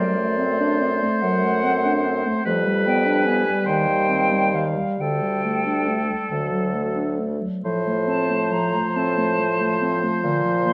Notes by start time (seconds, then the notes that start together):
Already playing: F#2 F#3 A3 C5 D5
0.16 A3
0.38 C4
0.60 D4
0.81 C4
1.02 A3
1.21 F#2 F#3 F#5
1.44 A3
1.64 C4
1.85 D4
2.06 C4
2.26 A3
2.45 F2 F3 G3 B4
2.66 G3
2.86 B3 G5
3.06 D4
3.25 B3 G#5
3.46 G3
3.66 D#2 D#3 C5 G5
3.88 G3
4.10 C4
4.32 G3
4.54 D#3 F5
4.77 G3
4.99 D2 D3 A4 G5
5.22 G3
5.44 A3
5.66 D4
5.88 A3
6.10 G3
6.30 D2 D3 F#3
6.51 F#3
6.74 A3
6.96 D4
7.19 A3
7.41 F#3
7.64 A2 F3 C5
7.87 A3
8.08 C4 A5
8.30 A3
8.52 F3 A#5
8.74 A3
8.96 A2 C4 A5
9.18 A3
9.40 F3
9.61 A3
9.82 C4
10.04 A3
10.24 A#2 D3
10.44 F3
10.65 A#3 C6